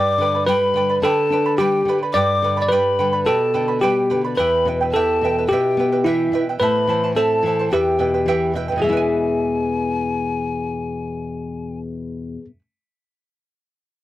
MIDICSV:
0, 0, Header, 1, 5, 480
1, 0, Start_track
1, 0, Tempo, 555042
1, 901, Time_signature, 2, 2, 24, 8
1, 12134, End_track
2, 0, Start_track
2, 0, Title_t, "Pan flute"
2, 0, Program_c, 0, 75
2, 0, Note_on_c, 0, 86, 104
2, 379, Note_off_c, 0, 86, 0
2, 406, Note_on_c, 0, 83, 97
2, 861, Note_off_c, 0, 83, 0
2, 878, Note_on_c, 0, 81, 98
2, 1337, Note_off_c, 0, 81, 0
2, 1358, Note_on_c, 0, 79, 95
2, 1705, Note_off_c, 0, 79, 0
2, 1842, Note_on_c, 0, 86, 107
2, 2243, Note_off_c, 0, 86, 0
2, 2252, Note_on_c, 0, 86, 72
2, 2302, Note_off_c, 0, 86, 0
2, 2307, Note_on_c, 0, 83, 93
2, 2773, Note_off_c, 0, 83, 0
2, 2806, Note_on_c, 0, 81, 91
2, 3263, Note_off_c, 0, 81, 0
2, 3281, Note_on_c, 0, 79, 85
2, 3628, Note_off_c, 0, 79, 0
2, 3765, Note_on_c, 0, 83, 98
2, 4035, Note_off_c, 0, 83, 0
2, 4256, Note_on_c, 0, 81, 86
2, 4708, Note_off_c, 0, 81, 0
2, 4731, Note_on_c, 0, 79, 91
2, 5186, Note_off_c, 0, 79, 0
2, 5233, Note_on_c, 0, 76, 78
2, 5566, Note_off_c, 0, 76, 0
2, 5704, Note_on_c, 0, 83, 95
2, 6153, Note_off_c, 0, 83, 0
2, 6184, Note_on_c, 0, 81, 82
2, 6632, Note_off_c, 0, 81, 0
2, 6656, Note_on_c, 0, 79, 84
2, 7347, Note_off_c, 0, 79, 0
2, 7629, Note_on_c, 0, 80, 89
2, 10201, Note_off_c, 0, 80, 0
2, 12134, End_track
3, 0, Start_track
3, 0, Title_t, "Charango"
3, 0, Program_c, 1, 24
3, 0, Note_on_c, 1, 67, 77
3, 0, Note_on_c, 1, 71, 81
3, 0, Note_on_c, 1, 74, 88
3, 0, Note_on_c, 1, 79, 88
3, 0, Note_on_c, 1, 83, 86
3, 170, Note_off_c, 1, 71, 0
3, 171, Note_off_c, 1, 79, 0
3, 179, Note_off_c, 1, 74, 0
3, 180, Note_on_c, 1, 71, 67
3, 181, Note_off_c, 1, 67, 0
3, 182, Note_off_c, 1, 83, 0
3, 182, Note_on_c, 1, 79, 55
3, 189, Note_on_c, 1, 74, 57
3, 193, Note_on_c, 1, 83, 71
3, 290, Note_off_c, 1, 83, 0
3, 292, Note_off_c, 1, 74, 0
3, 300, Note_off_c, 1, 71, 0
3, 300, Note_on_c, 1, 83, 53
3, 301, Note_off_c, 1, 79, 0
3, 303, Note_on_c, 1, 74, 52
3, 311, Note_on_c, 1, 71, 48
3, 408, Note_off_c, 1, 71, 0
3, 408, Note_off_c, 1, 74, 0
3, 412, Note_off_c, 1, 83, 0
3, 417, Note_on_c, 1, 67, 78
3, 417, Note_on_c, 1, 79, 91
3, 418, Note_on_c, 1, 71, 87
3, 418, Note_on_c, 1, 74, 83
3, 422, Note_on_c, 1, 83, 97
3, 644, Note_off_c, 1, 79, 0
3, 651, Note_off_c, 1, 71, 0
3, 654, Note_on_c, 1, 79, 69
3, 655, Note_off_c, 1, 74, 0
3, 655, Note_off_c, 1, 83, 0
3, 659, Note_off_c, 1, 67, 0
3, 662, Note_on_c, 1, 71, 69
3, 665, Note_on_c, 1, 74, 70
3, 665, Note_on_c, 1, 83, 77
3, 763, Note_off_c, 1, 83, 0
3, 768, Note_off_c, 1, 74, 0
3, 773, Note_off_c, 1, 71, 0
3, 773, Note_on_c, 1, 83, 58
3, 778, Note_off_c, 1, 79, 0
3, 778, Note_on_c, 1, 74, 52
3, 783, Note_on_c, 1, 71, 49
3, 890, Note_off_c, 1, 71, 0
3, 894, Note_off_c, 1, 83, 0
3, 900, Note_off_c, 1, 74, 0
3, 900, Note_on_c, 1, 67, 84
3, 900, Note_on_c, 1, 71, 88
3, 902, Note_on_c, 1, 79, 83
3, 905, Note_on_c, 1, 83, 101
3, 909, Note_on_c, 1, 74, 82
3, 1133, Note_off_c, 1, 79, 0
3, 1138, Note_off_c, 1, 71, 0
3, 1140, Note_off_c, 1, 74, 0
3, 1141, Note_off_c, 1, 67, 0
3, 1144, Note_off_c, 1, 83, 0
3, 1144, Note_on_c, 1, 79, 70
3, 1148, Note_on_c, 1, 71, 62
3, 1150, Note_on_c, 1, 74, 67
3, 1153, Note_on_c, 1, 83, 66
3, 1250, Note_off_c, 1, 83, 0
3, 1254, Note_off_c, 1, 74, 0
3, 1255, Note_off_c, 1, 71, 0
3, 1260, Note_on_c, 1, 83, 62
3, 1263, Note_off_c, 1, 79, 0
3, 1264, Note_on_c, 1, 74, 55
3, 1266, Note_on_c, 1, 71, 47
3, 1375, Note_off_c, 1, 74, 0
3, 1376, Note_off_c, 1, 71, 0
3, 1376, Note_off_c, 1, 83, 0
3, 1378, Note_on_c, 1, 67, 81
3, 1378, Note_on_c, 1, 79, 85
3, 1386, Note_on_c, 1, 71, 85
3, 1386, Note_on_c, 1, 74, 98
3, 1386, Note_on_c, 1, 83, 89
3, 1616, Note_off_c, 1, 79, 0
3, 1621, Note_off_c, 1, 67, 0
3, 1621, Note_off_c, 1, 71, 0
3, 1625, Note_off_c, 1, 74, 0
3, 1625, Note_off_c, 1, 83, 0
3, 1627, Note_on_c, 1, 79, 66
3, 1632, Note_on_c, 1, 71, 73
3, 1634, Note_on_c, 1, 74, 69
3, 1638, Note_on_c, 1, 83, 78
3, 1742, Note_off_c, 1, 83, 0
3, 1743, Note_off_c, 1, 74, 0
3, 1746, Note_off_c, 1, 79, 0
3, 1748, Note_off_c, 1, 71, 0
3, 1752, Note_on_c, 1, 83, 60
3, 1753, Note_on_c, 1, 74, 53
3, 1759, Note_on_c, 1, 71, 49
3, 1856, Note_off_c, 1, 71, 0
3, 1861, Note_off_c, 1, 74, 0
3, 1862, Note_on_c, 1, 67, 86
3, 1866, Note_on_c, 1, 71, 86
3, 1868, Note_off_c, 1, 83, 0
3, 1868, Note_on_c, 1, 79, 74
3, 1872, Note_on_c, 1, 74, 93
3, 1877, Note_on_c, 1, 83, 84
3, 2100, Note_off_c, 1, 79, 0
3, 2101, Note_off_c, 1, 71, 0
3, 2104, Note_off_c, 1, 67, 0
3, 2104, Note_off_c, 1, 83, 0
3, 2105, Note_off_c, 1, 74, 0
3, 2111, Note_on_c, 1, 71, 61
3, 2111, Note_on_c, 1, 79, 65
3, 2115, Note_on_c, 1, 74, 65
3, 2115, Note_on_c, 1, 83, 72
3, 2211, Note_off_c, 1, 83, 0
3, 2218, Note_off_c, 1, 71, 0
3, 2218, Note_off_c, 1, 74, 0
3, 2221, Note_on_c, 1, 83, 60
3, 2228, Note_off_c, 1, 79, 0
3, 2228, Note_on_c, 1, 71, 47
3, 2229, Note_on_c, 1, 74, 61
3, 2344, Note_off_c, 1, 71, 0
3, 2344, Note_off_c, 1, 83, 0
3, 2347, Note_off_c, 1, 74, 0
3, 2350, Note_on_c, 1, 79, 93
3, 2351, Note_on_c, 1, 67, 85
3, 2355, Note_on_c, 1, 71, 98
3, 2358, Note_on_c, 1, 74, 92
3, 2359, Note_on_c, 1, 83, 97
3, 2574, Note_off_c, 1, 79, 0
3, 2583, Note_off_c, 1, 74, 0
3, 2584, Note_off_c, 1, 71, 0
3, 2584, Note_on_c, 1, 79, 68
3, 2588, Note_off_c, 1, 83, 0
3, 2589, Note_off_c, 1, 67, 0
3, 2593, Note_on_c, 1, 74, 76
3, 2594, Note_on_c, 1, 71, 69
3, 2599, Note_on_c, 1, 83, 73
3, 2693, Note_off_c, 1, 83, 0
3, 2697, Note_off_c, 1, 74, 0
3, 2703, Note_on_c, 1, 83, 58
3, 2705, Note_off_c, 1, 71, 0
3, 2705, Note_off_c, 1, 79, 0
3, 2707, Note_on_c, 1, 74, 56
3, 2716, Note_on_c, 1, 71, 51
3, 2817, Note_off_c, 1, 71, 0
3, 2819, Note_off_c, 1, 74, 0
3, 2819, Note_off_c, 1, 83, 0
3, 2824, Note_on_c, 1, 67, 79
3, 2828, Note_on_c, 1, 71, 89
3, 2828, Note_on_c, 1, 79, 80
3, 2829, Note_on_c, 1, 83, 84
3, 2830, Note_on_c, 1, 74, 89
3, 3050, Note_off_c, 1, 71, 0
3, 3050, Note_off_c, 1, 79, 0
3, 3055, Note_off_c, 1, 74, 0
3, 3060, Note_on_c, 1, 71, 68
3, 3061, Note_off_c, 1, 83, 0
3, 3061, Note_on_c, 1, 79, 65
3, 3065, Note_on_c, 1, 74, 67
3, 3066, Note_off_c, 1, 67, 0
3, 3072, Note_on_c, 1, 83, 62
3, 3172, Note_off_c, 1, 83, 0
3, 3174, Note_off_c, 1, 74, 0
3, 3177, Note_off_c, 1, 71, 0
3, 3182, Note_on_c, 1, 83, 54
3, 3184, Note_off_c, 1, 79, 0
3, 3185, Note_on_c, 1, 74, 53
3, 3187, Note_on_c, 1, 71, 46
3, 3300, Note_off_c, 1, 74, 0
3, 3303, Note_off_c, 1, 71, 0
3, 3305, Note_off_c, 1, 83, 0
3, 3309, Note_on_c, 1, 79, 90
3, 3310, Note_on_c, 1, 74, 91
3, 3311, Note_on_c, 1, 67, 78
3, 3313, Note_on_c, 1, 71, 91
3, 3321, Note_on_c, 1, 83, 95
3, 3535, Note_off_c, 1, 79, 0
3, 3540, Note_off_c, 1, 71, 0
3, 3542, Note_off_c, 1, 83, 0
3, 3545, Note_on_c, 1, 79, 64
3, 3546, Note_off_c, 1, 74, 0
3, 3550, Note_off_c, 1, 67, 0
3, 3550, Note_on_c, 1, 71, 64
3, 3553, Note_on_c, 1, 83, 77
3, 3556, Note_on_c, 1, 74, 69
3, 3659, Note_off_c, 1, 83, 0
3, 3666, Note_off_c, 1, 74, 0
3, 3666, Note_off_c, 1, 79, 0
3, 3669, Note_off_c, 1, 71, 0
3, 3670, Note_on_c, 1, 83, 60
3, 3676, Note_on_c, 1, 74, 45
3, 3683, Note_on_c, 1, 71, 45
3, 3789, Note_off_c, 1, 83, 0
3, 3791, Note_off_c, 1, 71, 0
3, 3792, Note_off_c, 1, 74, 0
3, 3795, Note_on_c, 1, 67, 79
3, 3797, Note_on_c, 1, 76, 77
3, 3798, Note_on_c, 1, 79, 88
3, 3801, Note_on_c, 1, 71, 85
3, 3803, Note_on_c, 1, 64, 78
3, 4026, Note_off_c, 1, 76, 0
3, 4032, Note_off_c, 1, 64, 0
3, 4032, Note_off_c, 1, 67, 0
3, 4033, Note_off_c, 1, 79, 0
3, 4035, Note_off_c, 1, 71, 0
3, 4037, Note_on_c, 1, 76, 62
3, 4042, Note_on_c, 1, 64, 61
3, 4046, Note_on_c, 1, 71, 73
3, 4051, Note_on_c, 1, 79, 67
3, 4147, Note_off_c, 1, 79, 0
3, 4152, Note_off_c, 1, 76, 0
3, 4155, Note_off_c, 1, 64, 0
3, 4157, Note_off_c, 1, 71, 0
3, 4158, Note_on_c, 1, 79, 55
3, 4167, Note_on_c, 1, 71, 58
3, 4173, Note_on_c, 1, 64, 53
3, 4273, Note_off_c, 1, 79, 0
3, 4274, Note_off_c, 1, 64, 0
3, 4277, Note_off_c, 1, 71, 0
3, 4283, Note_on_c, 1, 67, 85
3, 4284, Note_on_c, 1, 64, 87
3, 4288, Note_on_c, 1, 79, 103
3, 4289, Note_on_c, 1, 71, 88
3, 4289, Note_on_c, 1, 76, 88
3, 4516, Note_off_c, 1, 64, 0
3, 4516, Note_off_c, 1, 67, 0
3, 4518, Note_off_c, 1, 79, 0
3, 4519, Note_off_c, 1, 71, 0
3, 4519, Note_off_c, 1, 76, 0
3, 4529, Note_on_c, 1, 76, 64
3, 4535, Note_on_c, 1, 71, 70
3, 4537, Note_on_c, 1, 64, 74
3, 4541, Note_on_c, 1, 79, 81
3, 4639, Note_off_c, 1, 76, 0
3, 4642, Note_off_c, 1, 71, 0
3, 4643, Note_off_c, 1, 64, 0
3, 4645, Note_off_c, 1, 79, 0
3, 4656, Note_on_c, 1, 79, 57
3, 4658, Note_on_c, 1, 71, 48
3, 4666, Note_on_c, 1, 64, 48
3, 4762, Note_off_c, 1, 79, 0
3, 4763, Note_off_c, 1, 71, 0
3, 4767, Note_off_c, 1, 64, 0
3, 4775, Note_on_c, 1, 67, 76
3, 4777, Note_on_c, 1, 76, 79
3, 4780, Note_on_c, 1, 64, 84
3, 4781, Note_on_c, 1, 71, 86
3, 4783, Note_on_c, 1, 79, 79
3, 4998, Note_off_c, 1, 64, 0
3, 4998, Note_off_c, 1, 76, 0
3, 5002, Note_off_c, 1, 67, 0
3, 5003, Note_off_c, 1, 71, 0
3, 5006, Note_off_c, 1, 79, 0
3, 5008, Note_on_c, 1, 64, 63
3, 5009, Note_on_c, 1, 76, 60
3, 5013, Note_on_c, 1, 71, 67
3, 5022, Note_on_c, 1, 79, 69
3, 5111, Note_off_c, 1, 79, 0
3, 5113, Note_off_c, 1, 71, 0
3, 5118, Note_off_c, 1, 64, 0
3, 5119, Note_off_c, 1, 76, 0
3, 5122, Note_on_c, 1, 79, 61
3, 5123, Note_on_c, 1, 71, 52
3, 5130, Note_on_c, 1, 64, 48
3, 5230, Note_off_c, 1, 64, 0
3, 5235, Note_off_c, 1, 79, 0
3, 5236, Note_off_c, 1, 71, 0
3, 5240, Note_on_c, 1, 64, 89
3, 5241, Note_on_c, 1, 67, 88
3, 5241, Note_on_c, 1, 76, 86
3, 5245, Note_on_c, 1, 71, 85
3, 5248, Note_on_c, 1, 79, 94
3, 5465, Note_off_c, 1, 76, 0
3, 5474, Note_off_c, 1, 64, 0
3, 5475, Note_off_c, 1, 67, 0
3, 5476, Note_on_c, 1, 76, 72
3, 5477, Note_off_c, 1, 71, 0
3, 5478, Note_off_c, 1, 79, 0
3, 5487, Note_on_c, 1, 64, 71
3, 5488, Note_on_c, 1, 71, 70
3, 5491, Note_on_c, 1, 79, 76
3, 5592, Note_off_c, 1, 76, 0
3, 5598, Note_off_c, 1, 64, 0
3, 5598, Note_off_c, 1, 71, 0
3, 5600, Note_off_c, 1, 79, 0
3, 5613, Note_on_c, 1, 79, 60
3, 5620, Note_on_c, 1, 71, 53
3, 5622, Note_on_c, 1, 64, 47
3, 5715, Note_off_c, 1, 64, 0
3, 5715, Note_off_c, 1, 71, 0
3, 5718, Note_on_c, 1, 69, 79
3, 5721, Note_off_c, 1, 79, 0
3, 5725, Note_on_c, 1, 64, 88
3, 5728, Note_on_c, 1, 72, 93
3, 5729, Note_on_c, 1, 76, 79
3, 5731, Note_on_c, 1, 81, 91
3, 5943, Note_off_c, 1, 76, 0
3, 5947, Note_off_c, 1, 64, 0
3, 5951, Note_off_c, 1, 81, 0
3, 5953, Note_off_c, 1, 69, 0
3, 5953, Note_on_c, 1, 76, 59
3, 5954, Note_off_c, 1, 72, 0
3, 5957, Note_on_c, 1, 64, 64
3, 5961, Note_on_c, 1, 81, 68
3, 5964, Note_on_c, 1, 72, 69
3, 6071, Note_off_c, 1, 76, 0
3, 6073, Note_off_c, 1, 64, 0
3, 6075, Note_off_c, 1, 81, 0
3, 6077, Note_off_c, 1, 72, 0
3, 6086, Note_on_c, 1, 81, 59
3, 6094, Note_on_c, 1, 72, 54
3, 6095, Note_on_c, 1, 64, 52
3, 6187, Note_off_c, 1, 81, 0
3, 6188, Note_off_c, 1, 64, 0
3, 6189, Note_off_c, 1, 72, 0
3, 6195, Note_on_c, 1, 69, 87
3, 6198, Note_on_c, 1, 64, 92
3, 6198, Note_on_c, 1, 76, 81
3, 6198, Note_on_c, 1, 81, 100
3, 6199, Note_on_c, 1, 72, 89
3, 6432, Note_off_c, 1, 69, 0
3, 6433, Note_off_c, 1, 64, 0
3, 6433, Note_off_c, 1, 76, 0
3, 6433, Note_off_c, 1, 81, 0
3, 6434, Note_off_c, 1, 72, 0
3, 6450, Note_on_c, 1, 76, 63
3, 6457, Note_on_c, 1, 64, 70
3, 6457, Note_on_c, 1, 72, 70
3, 6466, Note_on_c, 1, 81, 81
3, 6556, Note_off_c, 1, 81, 0
3, 6559, Note_off_c, 1, 76, 0
3, 6563, Note_off_c, 1, 64, 0
3, 6563, Note_off_c, 1, 72, 0
3, 6567, Note_on_c, 1, 81, 59
3, 6575, Note_on_c, 1, 72, 53
3, 6580, Note_on_c, 1, 64, 46
3, 6677, Note_off_c, 1, 64, 0
3, 6677, Note_off_c, 1, 81, 0
3, 6680, Note_off_c, 1, 72, 0
3, 6683, Note_on_c, 1, 76, 90
3, 6684, Note_on_c, 1, 71, 83
3, 6687, Note_on_c, 1, 64, 86
3, 6687, Note_on_c, 1, 67, 76
3, 6695, Note_on_c, 1, 79, 88
3, 6895, Note_off_c, 1, 76, 0
3, 6902, Note_off_c, 1, 64, 0
3, 6906, Note_on_c, 1, 76, 61
3, 6908, Note_off_c, 1, 71, 0
3, 6912, Note_off_c, 1, 79, 0
3, 6912, Note_on_c, 1, 64, 64
3, 6917, Note_off_c, 1, 67, 0
3, 6919, Note_on_c, 1, 71, 67
3, 6922, Note_on_c, 1, 79, 62
3, 7027, Note_off_c, 1, 76, 0
3, 7029, Note_off_c, 1, 71, 0
3, 7030, Note_off_c, 1, 64, 0
3, 7030, Note_off_c, 1, 79, 0
3, 7040, Note_on_c, 1, 71, 55
3, 7041, Note_on_c, 1, 79, 54
3, 7045, Note_on_c, 1, 64, 48
3, 7151, Note_off_c, 1, 71, 0
3, 7152, Note_off_c, 1, 64, 0
3, 7154, Note_off_c, 1, 79, 0
3, 7160, Note_on_c, 1, 67, 84
3, 7160, Note_on_c, 1, 76, 90
3, 7161, Note_on_c, 1, 71, 88
3, 7163, Note_on_c, 1, 64, 90
3, 7166, Note_on_c, 1, 79, 100
3, 7386, Note_off_c, 1, 76, 0
3, 7391, Note_off_c, 1, 71, 0
3, 7393, Note_off_c, 1, 64, 0
3, 7394, Note_off_c, 1, 67, 0
3, 7396, Note_on_c, 1, 76, 76
3, 7397, Note_off_c, 1, 79, 0
3, 7401, Note_on_c, 1, 71, 74
3, 7403, Note_on_c, 1, 64, 68
3, 7408, Note_on_c, 1, 79, 84
3, 7497, Note_off_c, 1, 79, 0
3, 7507, Note_off_c, 1, 71, 0
3, 7507, Note_on_c, 1, 79, 64
3, 7512, Note_off_c, 1, 64, 0
3, 7512, Note_off_c, 1, 76, 0
3, 7518, Note_on_c, 1, 71, 60
3, 7523, Note_on_c, 1, 64, 46
3, 7589, Note_on_c, 1, 68, 76
3, 7627, Note_off_c, 1, 79, 0
3, 7632, Note_off_c, 1, 71, 0
3, 7635, Note_off_c, 1, 64, 0
3, 7642, Note_on_c, 1, 76, 85
3, 7685, Note_on_c, 1, 64, 79
3, 7719, Note_on_c, 1, 71, 83
3, 7756, Note_on_c, 1, 80, 91
3, 10761, Note_off_c, 1, 68, 0
3, 10815, Note_off_c, 1, 76, 0
3, 10858, Note_off_c, 1, 64, 0
3, 10886, Note_off_c, 1, 71, 0
3, 10905, Note_off_c, 1, 80, 0
3, 12134, End_track
4, 0, Start_track
4, 0, Title_t, "Tine electric piano"
4, 0, Program_c, 2, 4
4, 0, Note_on_c, 2, 74, 113
4, 377, Note_off_c, 2, 74, 0
4, 402, Note_on_c, 2, 71, 99
4, 859, Note_off_c, 2, 71, 0
4, 895, Note_on_c, 2, 69, 97
4, 1346, Note_off_c, 2, 69, 0
4, 1368, Note_on_c, 2, 67, 107
4, 1711, Note_off_c, 2, 67, 0
4, 1851, Note_on_c, 2, 74, 114
4, 2255, Note_off_c, 2, 74, 0
4, 2265, Note_on_c, 2, 74, 74
4, 2322, Note_on_c, 2, 71, 101
4, 2336, Note_off_c, 2, 74, 0
4, 2823, Note_on_c, 2, 69, 102
4, 2829, Note_off_c, 2, 71, 0
4, 3271, Note_off_c, 2, 69, 0
4, 3297, Note_on_c, 2, 67, 97
4, 3637, Note_off_c, 2, 67, 0
4, 3782, Note_on_c, 2, 71, 102
4, 4231, Note_off_c, 2, 71, 0
4, 4269, Note_on_c, 2, 69, 95
4, 4743, Note_on_c, 2, 67, 101
4, 4763, Note_off_c, 2, 69, 0
4, 5227, Note_on_c, 2, 64, 88
4, 5240, Note_off_c, 2, 67, 0
4, 5562, Note_off_c, 2, 64, 0
4, 5704, Note_on_c, 2, 71, 102
4, 6153, Note_off_c, 2, 71, 0
4, 6196, Note_on_c, 2, 69, 88
4, 6639, Note_off_c, 2, 69, 0
4, 6682, Note_on_c, 2, 67, 92
4, 7360, Note_off_c, 2, 67, 0
4, 7625, Note_on_c, 2, 68, 82
4, 10763, Note_off_c, 2, 68, 0
4, 12134, End_track
5, 0, Start_track
5, 0, Title_t, "Nylon-string guitar"
5, 0, Program_c, 3, 24
5, 0, Note_on_c, 3, 43, 73
5, 157, Note_on_c, 3, 50, 59
5, 402, Note_off_c, 3, 50, 0
5, 402, Note_on_c, 3, 55, 57
5, 639, Note_on_c, 3, 50, 58
5, 644, Note_off_c, 3, 55, 0
5, 871, Note_off_c, 3, 43, 0
5, 872, Note_off_c, 3, 50, 0
5, 883, Note_on_c, 3, 50, 79
5, 1127, Note_on_c, 3, 62, 60
5, 1368, Note_off_c, 3, 62, 0
5, 1374, Note_on_c, 3, 55, 57
5, 1593, Note_off_c, 3, 50, 0
5, 1603, Note_on_c, 3, 50, 57
5, 1612, Note_off_c, 3, 55, 0
5, 1847, Note_off_c, 3, 50, 0
5, 1851, Note_on_c, 3, 43, 81
5, 2095, Note_on_c, 3, 50, 67
5, 2333, Note_off_c, 3, 50, 0
5, 2333, Note_on_c, 3, 55, 58
5, 2572, Note_off_c, 3, 55, 0
5, 2586, Note_on_c, 3, 50, 58
5, 2790, Note_off_c, 3, 43, 0
5, 2818, Note_on_c, 3, 47, 72
5, 2819, Note_off_c, 3, 50, 0
5, 3064, Note_on_c, 3, 50, 64
5, 3298, Note_off_c, 3, 50, 0
5, 3308, Note_on_c, 3, 55, 57
5, 3540, Note_off_c, 3, 55, 0
5, 3556, Note_on_c, 3, 50, 54
5, 3754, Note_off_c, 3, 47, 0
5, 3785, Note_off_c, 3, 50, 0
5, 3789, Note_on_c, 3, 40, 72
5, 4024, Note_on_c, 3, 47, 56
5, 4259, Note_off_c, 3, 47, 0
5, 4269, Note_on_c, 3, 52, 56
5, 4502, Note_off_c, 3, 52, 0
5, 4509, Note_on_c, 3, 47, 56
5, 4720, Note_off_c, 3, 40, 0
5, 4742, Note_off_c, 3, 47, 0
5, 4763, Note_on_c, 3, 47, 77
5, 4990, Note_on_c, 3, 59, 66
5, 5222, Note_off_c, 3, 59, 0
5, 5230, Note_on_c, 3, 52, 59
5, 5455, Note_off_c, 3, 47, 0
5, 5462, Note_off_c, 3, 52, 0
5, 5465, Note_on_c, 3, 47, 60
5, 5700, Note_off_c, 3, 47, 0
5, 5708, Note_on_c, 3, 45, 76
5, 5945, Note_on_c, 3, 52, 65
5, 6180, Note_off_c, 3, 52, 0
5, 6181, Note_on_c, 3, 60, 58
5, 6417, Note_off_c, 3, 60, 0
5, 6423, Note_on_c, 3, 52, 60
5, 6639, Note_off_c, 3, 45, 0
5, 6658, Note_off_c, 3, 52, 0
5, 6673, Note_on_c, 3, 40, 77
5, 6910, Note_on_c, 3, 47, 63
5, 7141, Note_on_c, 3, 52, 58
5, 7142, Note_off_c, 3, 47, 0
5, 7377, Note_off_c, 3, 52, 0
5, 7382, Note_on_c, 3, 47, 57
5, 7531, Note_off_c, 3, 40, 0
5, 7541, Note_on_c, 3, 40, 65
5, 7565, Note_off_c, 3, 47, 0
5, 7576, Note_on_c, 3, 47, 57
5, 7603, Note_on_c, 3, 52, 55
5, 7631, Note_on_c, 3, 56, 58
5, 7667, Note_on_c, 3, 59, 51
5, 7694, Note_on_c, 3, 64, 68
5, 10679, Note_off_c, 3, 40, 0
5, 10714, Note_off_c, 3, 47, 0
5, 10741, Note_off_c, 3, 52, 0
5, 10768, Note_off_c, 3, 56, 0
5, 10805, Note_off_c, 3, 59, 0
5, 10832, Note_off_c, 3, 64, 0
5, 12134, End_track
0, 0, End_of_file